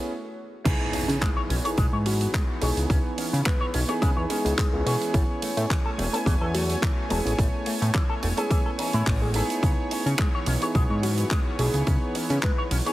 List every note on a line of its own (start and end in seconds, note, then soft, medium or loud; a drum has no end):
0.64 0.76 C#2 medium
0.64 5.10 E3 medium
0.64 1.49 B3 loud
0.64 5.10 B3 medium
0.64 0.73 C#4 medium
0.64 1.49 D#4 medium
0.64 1.50 E4 medium
0.64 1.50 G#4 loud
0.64 12.93 C#5 medium
0.64 kick loud
0.64 closed hi-hat medium
0.64 crash loud
0.64 impact medium
0.93 1.01 C#4 medium
0.93 open hi-hat loud
1.08 1.17 C#3 loud
1.08 1.15 C#4 medium
1.08 closed hi-hat medium
1.21 1.29 G#3 loud
1.21 kick loud
1.21 clap loud
1.21 closed hi-hat medium
1.37 1.41 C#5 loud
1.50 1.60 B1 medium
1.50 1.54 C#4 loud
1.50 open hi-hat loud
1.64 2.58 B3 medium
1.64 2.59 D#4 medium
1.64 2.59 E4 medium
1.64 2.59 G#4 medium
1.64 1.69 C#5 loud
1.64 closed hi-hat medium
1.77 1.88 B1 loud
1.77 1.85 G#3 loud
1.77 kick loud
1.77 closed hi-hat medium
1.93 2.27 G#2 medium
1.93 1.97 C#5 medium
2.06 2.13 C#4 medium
2.06 2.30 F#4 medium
2.06 open hi-hat loud
2.21 closed hi-hat medium
2.34 2.41 G#3 loud
2.34 kick loud
2.34 clap loud
2.34 closed hi-hat medium
2.61 2.72 B1 loud
2.61 3.85 B3 medium
2.61 3.85 D#4 medium
2.61 3.86 E4 medium
2.61 2.86 G#4 loud
2.61 3.86 G#4 medium
2.61 2.69 C#5 medium
2.61 open hi-hat loud
2.77 2.85 C#2 medium
2.77 closed hi-hat medium
2.90 3.00 C#2 loud
2.90 2.97 C#4 medium
2.90 kick loud
2.90 closed hi-hat medium
3.18 3.26 C#4 medium
3.18 open hi-hat loud
3.33 3.42 C#3 loud
3.33 3.40 C#4 medium
3.33 closed hi-hat medium
3.46 3.54 G#3 loud
3.46 3.70 B4 medium
3.46 kick loud
3.46 clap loud
3.46 closed hi-hat medium
3.61 3.65 C#5 loud
3.74 3.84 B1 medium
3.74 3.79 C#4 loud
3.74 open hi-hat loud
3.88 4.27 B3 loud
3.88 4.27 D#4 medium
3.88 4.27 E4 medium
3.88 4.27 G#4 loud
3.88 3.93 C#5 loud
3.88 closed hi-hat medium
4.02 4.12 C#3 loud
4.02 4.09 G#3 loud
4.02 kick loud
4.02 closed hi-hat medium
4.17 4.26 E2 medium
4.17 4.21 C#5 medium
4.30 4.69 B3 medium
4.30 4.37 C#4 medium
4.30 4.69 D#4 medium
4.30 4.70 E4 medium
4.30 4.70 G#4 loud
4.30 4.70 G#4 medium
4.30 open hi-hat loud
4.45 4.54 C#2 loud
4.45 closed hi-hat medium
4.58 4.66 G#3 loud
4.58 kick loud
4.58 clap loud
4.58 closed hi-hat medium
4.73 4.82 C#2 medium
4.73 4.83 B3 medium
4.73 4.83 D#4 medium
4.73 4.83 E4 medium
4.73 5.14 G#4 loud
4.73 4.83 G#4 medium
4.85 4.96 B2 medium
4.85 6.09 B3 loud
4.85 6.09 C#4 medium
4.85 6.10 E4 medium
4.85 6.10 G#4 loud
4.85 4.94 C#5 medium
4.85 open hi-hat loud
5.02 closed hi-hat medium
5.14 5.24 A1 loud
5.14 5.22 A3 medium
5.14 9.59 A3 medium
5.14 9.59 G#5 medium
5.14 kick loud
5.14 closed hi-hat medium
5.42 5.50 A3 medium
5.42 open hi-hat loud
5.57 5.66 A2 loud
5.57 5.64 A3 medium
5.57 closed hi-hat medium
5.70 5.78 E3 loud
5.70 kick loud
5.70 clap loud
5.70 closed hi-hat medium
5.86 5.89 A4 loud
5.98 6.08 E1 medium
5.98 6.03 A3 loud
5.98 open hi-hat loud
6.12 7.07 B3 medium
6.12 7.07 C#4 medium
6.12 7.08 E4 medium
6.12 6.17 A4 loud
6.12 7.08 G#5 medium
6.12 closed hi-hat medium
6.26 6.36 E1 loud
6.26 6.34 E3 loud
6.26 kick loud
6.26 closed hi-hat medium
6.41 6.75 E2 medium
6.41 6.45 A4 medium
6.54 6.62 A3 medium
6.54 6.78 F#4 medium
6.54 open hi-hat loud
6.70 closed hi-hat medium
6.82 6.90 E3 loud
6.82 kick loud
6.82 clap loud
6.82 closed hi-hat medium
7.09 7.20 E1 loud
7.09 8.33 B3 medium
7.09 8.34 C#4 medium
7.09 8.34 E4 medium
7.09 7.34 G#4 loud
7.09 7.18 A4 medium
7.09 8.34 G#5 medium
7.09 open hi-hat loud
7.25 7.34 A1 medium
7.25 closed hi-hat medium
7.38 7.48 A1 loud
7.38 7.46 A3 medium
7.38 kick loud
7.38 closed hi-hat medium
7.66 7.74 A3 medium
7.66 open hi-hat loud
7.81 7.90 A2 loud
7.81 7.88 A3 medium
7.81 closed hi-hat medium
7.94 8.02 E3 loud
7.94 kick loud
7.94 clap loud
7.94 closed hi-hat medium
8.09 8.13 A4 loud
8.23 8.33 E1 medium
8.23 8.27 A3 loud
8.23 open hi-hat loud
8.37 8.75 B3 medium
8.37 8.75 C#4 medium
8.37 8.76 E4 medium
8.37 8.61 G#4 medium
8.37 8.42 A4 loud
8.37 8.76 G#5 loud
8.37 closed hi-hat medium
8.51 8.58 E3 loud
8.51 kick loud
8.51 closed hi-hat medium
8.66 8.70 A4 medium
8.78 9.18 E3 medium
8.78 9.18 B3 medium
8.78 9.18 C#4 medium
8.78 8.86 D#4 medium
8.78 9.18 G#5 medium
8.78 open hi-hat loud
8.93 9.02 A2 medium
8.93 9.04 E4 loud
8.93 closed hi-hat medium
9.06 9.42 A1 medium
9.06 9.14 A3 medium
9.06 kick loud
9.06 clap loud
9.06 open hi-hat medium
9.21 9.31 B3 medium
9.21 9.32 C#4 medium
9.21 9.32 E4 medium
9.21 9.30 G#4 medium
9.21 9.32 G#4 medium
9.34 10.58 B3 loud
9.34 10.58 D#4 medium
9.34 10.59 E4 medium
9.34 9.44 G#4 medium
9.34 10.59 G#4 loud
9.34 9.42 A4 medium
9.34 open hi-hat loud
9.50 closed hi-hat medium
9.63 9.73 C#2 loud
9.63 12.93 E3 medium
9.63 12.93 B3 medium
9.63 9.71 C#4 medium
9.63 kick loud
9.63 closed hi-hat medium
9.91 9.99 C#4 medium
9.91 open hi-hat loud
10.06 10.15 C#3 loud
10.06 10.13 C#4 medium
10.06 closed hi-hat medium
10.19 10.27 G#3 loud
10.19 kick loud
10.19 clap loud
10.19 closed hi-hat medium
10.35 10.38 C#5 loud
10.46 10.57 B1 medium
10.46 10.52 C#4 loud
10.46 open hi-hat loud
10.61 11.55 B3 medium
10.61 11.56 D#4 medium
10.61 11.56 E4 medium
10.61 11.56 G#4 medium
10.61 10.66 C#5 loud
10.61 closed hi-hat medium
10.75 10.85 B1 loud
10.75 10.83 G#3 loud
10.75 kick loud
10.75 closed hi-hat medium
10.90 11.24 G#2 medium
10.90 10.94 C#5 medium
11.03 11.11 C#4 medium
11.03 11.27 F#4 medium
11.03 open hi-hat loud
11.18 closed hi-hat medium
11.31 11.39 G#3 loud
11.31 kick loud
11.31 clap loud
11.31 closed hi-hat medium
11.59 11.69 B1 loud
11.59 12.82 B3 medium
11.59 12.83 D#4 medium
11.59 12.83 E4 medium
11.59 11.83 G#4 loud
11.59 12.83 G#4 medium
11.59 11.67 C#5 medium
11.59 open hi-hat loud
11.74 11.83 C#2 medium
11.74 closed hi-hat medium
11.87 11.97 C#2 loud
11.87 11.95 C#4 medium
11.87 kick loud
11.87 closed hi-hat medium
12.15 12.23 C#4 medium
12.15 open hi-hat loud
12.30 12.39 C#3 loud
12.30 12.37 C#4 medium
12.30 closed hi-hat medium
12.42 12.51 G#3 loud
12.42 12.67 B4 loud
12.42 kick loud
12.42 clap loud
12.42 closed hi-hat medium
12.58 12.62 C#5 loud
12.71 12.81 B1 medium
12.71 12.76 C#4 loud
12.71 open hi-hat loud
12.86 12.93 B3 loud
12.86 12.93 D#4 medium
12.86 12.93 E4 medium
12.86 12.93 G#4 loud
12.86 12.90 C#5 loud
12.86 closed hi-hat medium